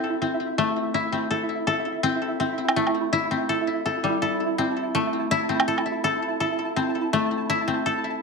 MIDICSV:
0, 0, Header, 1, 4, 480
1, 0, Start_track
1, 0, Key_signature, 0, "minor"
1, 0, Tempo, 363636
1, 1729, Time_signature, 4, 2, 24, 8
1, 10852, End_track
2, 0, Start_track
2, 0, Title_t, "Synth texture"
2, 0, Program_c, 0, 99
2, 0, Note_on_c, 0, 64, 88
2, 0, Note_on_c, 0, 76, 83
2, 5573, Note_on_c, 0, 81, 85
2, 5594, Note_off_c, 0, 76, 0
2, 10852, Note_off_c, 0, 64, 0
2, 10852, Note_off_c, 0, 81, 0
2, 10852, End_track
3, 0, Start_track
3, 0, Title_t, "Koto"
3, 0, Program_c, 1, 107
3, 0, Note_on_c, 1, 57, 92
3, 0, Note_on_c, 1, 60, 93
3, 0, Note_on_c, 1, 64, 90
3, 0, Note_on_c, 1, 69, 99
3, 280, Note_off_c, 1, 60, 0
3, 286, Note_on_c, 1, 60, 71
3, 762, Note_off_c, 1, 57, 0
3, 768, Note_on_c, 1, 57, 100
3, 1239, Note_off_c, 1, 64, 0
3, 1244, Note_on_c, 1, 64, 93
3, 1479, Note_off_c, 1, 60, 0
3, 1484, Note_on_c, 1, 60, 74
3, 1718, Note_off_c, 1, 69, 0
3, 1723, Note_on_c, 1, 69, 76
3, 2199, Note_off_c, 1, 69, 0
3, 2205, Note_on_c, 1, 69, 93
3, 2678, Note_off_c, 1, 60, 0
3, 2683, Note_on_c, 1, 60, 100
3, 3161, Note_off_c, 1, 60, 0
3, 3166, Note_on_c, 1, 60, 73
3, 3643, Note_off_c, 1, 57, 0
3, 3648, Note_on_c, 1, 57, 92
3, 4122, Note_off_c, 1, 64, 0
3, 4127, Note_on_c, 1, 64, 100
3, 4364, Note_off_c, 1, 60, 0
3, 4369, Note_on_c, 1, 60, 71
3, 4603, Note_off_c, 1, 69, 0
3, 4609, Note_on_c, 1, 69, 81
3, 5084, Note_off_c, 1, 69, 0
3, 5089, Note_on_c, 1, 69, 71
3, 5329, Note_on_c, 1, 55, 72
3, 5564, Note_off_c, 1, 69, 0
3, 5570, Note_on_c, 1, 69, 75
3, 6045, Note_off_c, 1, 60, 0
3, 6050, Note_on_c, 1, 60, 74
3, 6525, Note_off_c, 1, 57, 0
3, 6530, Note_on_c, 1, 57, 98
3, 7006, Note_off_c, 1, 64, 0
3, 7011, Note_on_c, 1, 64, 95
3, 7244, Note_off_c, 1, 60, 0
3, 7249, Note_on_c, 1, 60, 76
3, 7489, Note_off_c, 1, 69, 0
3, 7495, Note_on_c, 1, 69, 79
3, 7968, Note_off_c, 1, 69, 0
3, 7974, Note_on_c, 1, 69, 98
3, 8447, Note_off_c, 1, 69, 0
3, 8453, Note_on_c, 1, 69, 80
3, 8923, Note_off_c, 1, 60, 0
3, 8928, Note_on_c, 1, 60, 74
3, 9408, Note_off_c, 1, 57, 0
3, 9413, Note_on_c, 1, 57, 92
3, 9790, Note_off_c, 1, 55, 0
3, 9889, Note_off_c, 1, 64, 0
3, 9894, Note_on_c, 1, 64, 99
3, 10127, Note_off_c, 1, 60, 0
3, 10132, Note_on_c, 1, 60, 72
3, 10368, Note_off_c, 1, 69, 0
3, 10373, Note_on_c, 1, 69, 81
3, 10849, Note_off_c, 1, 69, 0
3, 10852, Note_off_c, 1, 57, 0
3, 10852, Note_off_c, 1, 60, 0
3, 10852, Note_off_c, 1, 64, 0
3, 10852, End_track
4, 0, Start_track
4, 0, Title_t, "Drums"
4, 3544, Note_on_c, 9, 77, 71
4, 3676, Note_off_c, 9, 77, 0
4, 3784, Note_on_c, 9, 77, 32
4, 3916, Note_off_c, 9, 77, 0
4, 7388, Note_on_c, 9, 77, 73
4, 7520, Note_off_c, 9, 77, 0
4, 7627, Note_on_c, 9, 77, 35
4, 7759, Note_off_c, 9, 77, 0
4, 10852, End_track
0, 0, End_of_file